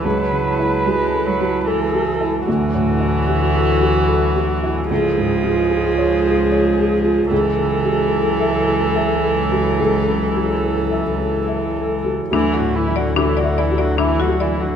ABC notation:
X:1
M:3/4
L:1/16
Q:1/4=74
K:F#m
V:1 name="Marimba"
z12 | z12 | z12 | z12 |
z12 | D A z d D d d d D F d z |]
V:2 name="Felt piano"
(3[C,,E]2 C,2 E2 (3F2 A2 F2 (3A2 F2 E2 | (3D,,2 A,,2 E2 (3F2 A2 F2 (3A2 F2 E2 | (3C,,2 G,,2 ^E2 (3G2 c2 G2 (3c2 G2 E2 | (3C,,2 C,2 F2 (3A2 e2 A2 (3e2 A2 F2 |
(3C,,2 C,2 F2 (3A2 e2 A2 (3e2 A2 F2 | (3D,,2 A,,2 E2 (3F2 e2 F2 (3e2 F2 E2 |]
V:3 name="Viola"
B8 A4 | F12 | G12 | A12- |
A8- A3 z | E F E F E F E F E F E F |]
V:4 name="Ambient pad"
[F,Ea]12 | [F,EA]12 | [G,^EG]12 | [F,EA]12- |
[F,EA]12 | [F,EA]12 |]
V:5 name="Cello" clef=bass
F,4 G,2 F,2 E,4 | E,12 | ^E,12 | E,12- |
E,8- E,3 z | E, D, E, D, E, D, E, D, E, D, E, D, |]
V:6 name="Double bass" clef=bass
C,,12 | D,,12 | C,,12 | C,,12- |
C,,12 | D,,12 |]